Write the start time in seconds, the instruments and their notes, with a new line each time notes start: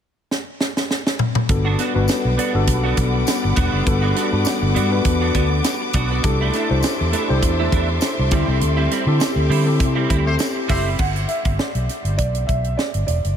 0.31 snare
0.61 snare
0.77 snare
0.91 snare
1.07 snare
1.19 mid tom
1.35 mid tom
1.49 fingered electric bass G1, string section G3 F#5 B5 D6, tine electric piano B3 D4 F#4 A4, muted clean electric guitar stroke, kick, closed hi-hat
1.65 clean electric guitar B3 D4 F#4
1.79 clean electric guitar B3 D4 F#4, snare, closed hi-hat
1.95 fingered electric bass G1, tine electric piano B3 D4 F#4 B4, muted clean electric guitar stroke
2.08 muted clean electric guitar stroke, snare, closed hi-hat, tambourine
2.24 fingered electric bass B1, muted clean electric guitar stroke
2.38 clean electric guitar B3 D4 F#4, closed hi-hat
2.54 fingered electric bass G1, tine electric piano B3 D4 F#4 A4, muted clean electric guitar stroke
2.67 fingered electric bass B1, muted clean electric guitar stroke, kick, closed hi-hat
2.84 clean electric guitar B3 D4 F#4
2.97 fingered electric bass B1, muted clean electric guitar stroke, kick, closed hi-hat
3.14 muted clean electric guitar stroke
3.27 muted clean electric guitar stroke, snare, closed hi-hat, tambourine
3.43 fingered electric bass G1, muted clean electric guitar stroke
3.56 fingered electric bass E1, clean electric guitar B3 D4 F#4, kick, closed hi-hat
3.72 fingered electric bass F#1, clean electric guitar B3 D4 F#4
3.86 fingered electric bass G1, tine electric piano B3 D4 F#4 A4, muted clean electric guitar stroke, kick, closed hi-hat
4.02 clean electric guitar B3 D4 F#4
4.15 clean electric guitar B3 D4 F#4, snare, closed hi-hat
4.32 fingered electric bass G2, tine electric piano B3 D4 F#4 B4, muted clean electric guitar stroke
4.45 muted clean electric guitar stroke, snare, closed hi-hat, tambourine
4.62 fingered electric bass G1, muted clean electric guitar stroke
4.75 fingered electric bass G2, clean electric guitar B3 D4 F#4, closed hi-hat
4.91 tine electric piano B3 D4 F#4 B4, muted clean electric guitar stroke
5.05 fingered electric bass E2, muted clean electric guitar stroke, kick, closed hi-hat
5.21 clean electric guitar B3 D4 F#4
5.34 fingered electric bass D2, clean electric guitar B3 D4 F#4, kick, closed hi-hat
5.50 muted clean electric guitar stroke
5.64 muted clean electric guitar stroke, snare, closed hi-hat, tambourine
5.81 muted clean electric guitar stroke
5.93 fingered electric bass B1, clean electric guitar B3 D4 F#4, kick, closed hi-hat
6.11 clean electric guitar B3 D4 F#4
6.23 fingered electric bass C2, tine electric piano D4 E4 G4 A4, string section A4 E5 C6, muted clean electric guitar stroke, kick, closed hi-hat
6.41 clean electric guitar A3 D4 E4
6.53 clean electric guitar A3 D4 E4, snare, closed hi-hat
6.69 fingered electric bass C2, tine electric piano D4 E4 G4 C5, muted clean electric guitar stroke
6.83 muted clean electric guitar stroke, snare, closed hi-hat, tambourine
6.99 fingered electric bass E2, muted clean electric guitar stroke
7.13 clean electric guitar A3 D4 E4, snare, closed hi-hat
7.29 fingered electric bass C2, tine electric piano D4 E4 G4 C5, muted clean electric guitar stroke
7.42 fingered electric bass E2, muted clean electric guitar stroke, kick, closed hi-hat
7.59 clean electric guitar A3 D4 E4
7.72 fingered electric bass E2, clean electric guitar A3 D4 E4, kick, closed hi-hat
7.89 muted clean electric guitar stroke
8.01 muted clean electric guitar stroke, snare, closed hi-hat, tambourine
8.19 fingered electric bass C2, muted clean electric guitar stroke
8.31 fingered electric bass D2, clean electric guitar G3 C4 E4, tine electric piano C4 E4 G4 A4, string section G4, kick, closed hi-hat
8.48 fingered electric bass C2, clean electric guitar G3 C4 E4
8.61 fingered electric bass D2, muted clean electric guitar stroke, closed hi-hat
8.77 clean electric guitar G3 C4 E4
8.91 clean electric guitar G3 C4 E4, snare, closed hi-hat
9.06 fingered electric bass D3, tine electric piano C4 E4 G4 A4, muted clean electric guitar stroke
9.20 muted clean electric guitar stroke, snare, closed hi-hat, tambourine
9.36 fingered electric bass D2, muted clean electric guitar stroke
9.49 fingered electric bass D3, clean electric guitar G3 C4 E4, open hi-hat
9.65 tine electric piano C4 E4 G4 A4, muted clean electric guitar stroke
9.80 fingered electric bass C3, muted clean electric guitar stroke, kick, closed hi-hat
9.95 clean electric guitar G3 C4 E4
10.09 fingered electric bass D2, clean electric guitar G3 C4 E4, kick, closed hi-hat
10.25 horn section A3 G4 C5, muted clean electric guitar stroke
10.39 muted clean electric guitar stroke, snare, closed hi-hat, tambourine
10.55 muted clean electric guitar stroke
10.68 fingered electric bass F#1, clean electric guitar G3 C4 E4, horn section A3 G4 C5, grand piano E5, kick, open hi-hat
10.84 clean electric guitar G3 C4 E4
10.99 fingered electric bass G1, grand piano F#5, kick, crash
11.16 closed hi-hat
11.28 grand piano E5, closed hi-hat
11.45 fingered electric bass G1, kick, closed hi-hat
11.59 grand piano D5, snare
11.75 fingered electric bass B1, closed hi-hat
11.89 snare, closed hi-hat
12.04 fingered electric bass G1, closed hi-hat
12.17 fingered electric bass B1, grand piano D5, kick, closed hi-hat
12.35 closed hi-hat
12.47 fingered electric bass B1, grand piano E5, kick, closed hi-hat
12.64 closed hi-hat
12.77 grand piano D5, snare
12.94 fingered electric bass G1, closed hi-hat
13.07 fingered electric bass E1, grand piano D5, closed hi-hat
13.24 fingered electric bass F#1, closed hi-hat